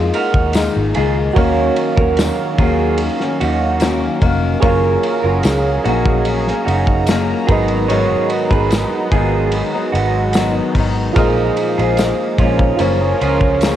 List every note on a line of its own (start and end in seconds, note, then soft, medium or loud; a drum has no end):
0.00 0.10 F2 medium
0.00 0.54 G#3 soft
0.00 1.33 G#3 medium
0.00 4.59 A#3 medium
0.00 0.54 D#4 medium
0.00 1.33 D#4 medium
0.00 0.55 F4 medium
0.14 0.54 F#4 medium
0.14 0.53 A#4 medium
0.14 ride medium
0.34 0.67 D#2 medium
0.34 kick medium
0.53 0.94 D#3 medium
0.53 0.95 G#3 medium
0.53 0.96 D#4 medium
0.53 snare loud
0.53 ride medium
0.53 tambourine medium
0.57 0.97 F4 medium
0.76 0.92 G#1 medium
0.94 1.29 C#2 medium
0.94 1.36 D#3 medium
0.94 1.37 G#3 medium
0.94 1.37 D#4 medium
0.94 1.15 F4 medium
0.94 1.38 F4 medium
0.94 1.15 G#4 medium
0.94 ride medium
1.33 1.69 D#2 loud
1.33 4.60 D#3 medium
1.33 1.98 D#3 medium
1.33 4.60 F#3 medium
1.33 4.60 C#4 medium
1.33 4.57 F#4 medium
1.33 4.58 A#4 medium
1.33 1.75 A#4 medium
1.33 1.75 C#5 medium
1.33 4.59 C#5 medium
1.33 7.45 F5 medium
1.33 kick loud
1.33 ride medium
1.38 1.98 A#3 medium
1.38 1.98 C#4 medium
1.38 1.96 F#4 medium
1.38 4.60 F5 medium
1.76 ride medium
1.96 2.30 D#2 medium
1.96 2.60 C#4 medium
1.96 2.59 F#4 medium
1.96 2.17 F#4 medium
1.96 2.16 A#4 medium
1.96 kick loud
2.01 2.58 A#3 medium
2.17 snare loud
2.17 ride medium
2.17 tambourine medium
2.58 3.08 D#2 medium
2.58 3.20 D#3 medium
2.58 3.21 A#3 medium
2.58 3.20 C#4 medium
2.58 2.98 F4 medium
2.58 3.18 F#4 medium
2.58 2.98 G#4 medium
2.58 kick loud
2.58 ride medium
2.98 ride medium
3.19 3.80 A#3 soft
3.19 3.81 C#4 medium
3.19 3.81 F#4 medium
3.19 snare soft
3.40 4.06 D#2 medium
3.40 3.99 D#4 medium
3.40 3.98 F#4 medium
3.40 ride medium
3.80 4.20 D#3 medium
3.80 4.22 A#3 medium
3.80 4.22 C#4 medium
3.80 4.23 F#4 medium
3.80 snare loud
3.80 ride medium
3.80 tambourine medium
4.21 4.54 F1 medium
4.21 4.61 D#3 medium
4.21 4.61 A#3 medium
4.21 4.62 C#4 medium
4.21 4.63 F#4 medium
4.21 kick medium
4.21 ride medium
4.60 4.96 F#1 loud
4.60 5.24 F#3 medium
4.60 7.46 F#3 medium
4.60 5.24 A#3 medium
4.60 7.46 C#4 medium
4.60 5.24 C#4 medium
4.60 5.23 F4 loud
4.60 7.43 G#4 medium
4.60 7.46 G#4 medium
4.60 7.44 A#4 medium
4.60 5.02 A#4 medium
4.60 5.01 C#5 medium
4.60 7.45 C#5 medium
4.60 11.12 A#5 medium
4.60 kick loud
4.60 ride medium
4.66 7.46 F5 medium
5.03 ride medium
5.23 5.40 F#1 medium
5.23 5.84 A#3 soft
5.23 5.85 C#4 medium
5.23 5.85 F4 medium
5.23 5.44 F#4 medium
5.23 5.43 A#4 medium
5.43 5.77 C#2 medium
5.43 snare loud
5.43 ride medium
5.43 tambourine medium
5.84 6.51 A#1 loud
5.84 6.46 F#3 medium
5.84 6.47 A#3 medium
5.84 6.47 C#4 medium
5.84 6.24 D#4 medium
5.84 6.24 F#4 medium
5.84 ride medium
6.06 kick medium
6.25 ride medium
6.47 7.08 A#3 medium
6.47 7.09 C#4 soft
6.47 snare soft
6.65 7.32 F#1 medium
6.65 7.05 D#4 medium
6.65 7.05 F#4 medium
6.65 ride medium
6.87 kick medium
7.07 7.48 F#3 medium
7.07 7.49 A#3 medium
7.07 7.50 C#4 medium
7.07 snare loud
7.07 ride medium
7.07 tambourine medium
7.11 7.50 F4 medium
7.47 8.14 G#1 medium
7.47 7.88 D#3 medium
7.47 11.13 F#3 medium
7.47 7.89 F#3 medium
7.47 12.76 G#3 medium
7.47 11.13 B3 loud
7.47 7.89 B3 medium
7.47 7.68 D#4 medium
7.47 12.76 D#4 medium
7.47 10.70 F#4 medium
7.47 7.67 G#4 medium
7.47 10.71 A#4 medium
7.47 10.72 B4 medium
7.47 kick loud
7.47 ride medium
7.51 7.89 D#4 medium
7.51 10.73 D#5 medium
7.68 ride soft
7.88 8.50 G#2 medium
7.88 8.51 D#3 loud
7.88 8.51 F#3 medium
7.88 8.51 B3 medium
7.88 8.50 D#4 medium
7.88 8.28 G#4 medium
7.88 8.28 C#5 loud
7.88 ride medium
8.30 ride medium
8.50 8.84 G#1 medium
8.50 9.12 F#3 medium
8.50 9.13 B3 medium
8.50 9.12 D#4 medium
8.50 8.71 G#4 medium
8.50 8.70 B4 medium
8.50 kick loud
8.50 ride soft
8.70 snare loud
8.70 ride medium
8.70 tambourine medium
9.12 9.61 G#1 medium
9.12 9.73 D#3 medium
9.12 9.74 F#3 medium
9.12 9.74 B3 medium
9.12 9.72 D#4 medium
9.12 9.51 F4 medium
9.12 9.51 G#4 medium
9.12 kick loud
9.12 ride medium
9.52 ride medium
9.74 10.34 F#3 soft
9.74 10.35 B3 medium
9.74 10.35 D#4 medium
9.92 10.59 G#1 loud
9.92 10.51 D#4 medium
9.92 10.51 F#4 medium
9.92 ride medium
10.33 10.75 D#3 medium
10.33 10.76 F#3 medium
10.33 10.76 B3 medium
10.33 snare loud
10.33 ride medium
10.33 tambourine medium
10.37 10.77 D#4 medium
10.75 11.08 G#1 medium
10.75 11.16 D#3 medium
10.75 11.16 F#3 medium
10.75 11.17 B3 medium
10.75 11.16 D#4 medium
10.75 kick medium
10.75 open hi-hat medium
10.75 ride medium
11.13 11.49 A#1 loud
11.13 11.77 A#2 medium
11.13 11.77 F3 medium
11.13 12.78 A#3 medium
11.13 12.75 F4 medium
11.13 11.55 F4 medium
11.13 12.76 G#4 medium
11.13 11.55 A#4 medium
11.13 12.76 A#4 medium
11.13 kick loud
11.13 hi-hat pedal medium
11.13 ride medium
11.18 11.78 G#3 medium
11.18 11.76 D#4 medium
11.18 12.77 D#5 medium
11.57 ride medium
11.77 12.11 A#1 loud
11.77 12.39 F3 medium
11.77 12.40 G#3 medium
11.77 12.39 D#4 medium
11.77 11.98 F4 medium
11.77 11.97 G#4 medium
11.77 ride soft
11.97 snare loud
11.97 ride medium
11.97 tambourine medium
12.38 12.71 A#1 loud
12.38 12.79 A#2 medium
12.38 12.78 F3 medium
12.38 12.80 G#3 medium
12.38 12.78 C#4 medium
12.38 12.81 D#4 medium
12.38 12.78 F4 medium
12.38 kick medium
12.38 ride medium
12.59 kick loud
12.77 13.12 F#1 loud
12.77 13.00 F#2 medium
12.77 13.00 C#3 medium
12.77 13.76 F3 medium
12.77 13.00 F3 medium
12.77 13.76 C#4 medium
12.77 13.76 F4 medium
12.77 13.76 G#4 medium
12.77 13.76 A#4 loud
12.77 13.76 A#4 medium
12.77 ride medium
12.81 13.00 A#3 medium
12.81 12.99 C#4 medium
12.81 13.76 C#5 medium
13.00 13.61 F3 soft
13.00 13.62 A#3 medium
13.00 13.61 C#4 medium
13.21 13.76 C#2 medium
13.21 13.61 C#4 medium
13.21 13.60 F4 medium
13.21 ride medium
13.41 kick medium
13.61 13.76 C#3 medium
13.61 13.76 F3 medium
13.61 13.76 A#3 medium
13.61 13.76 C#4 medium
13.61 snare loud
13.61 ride medium
13.61 tambourine medium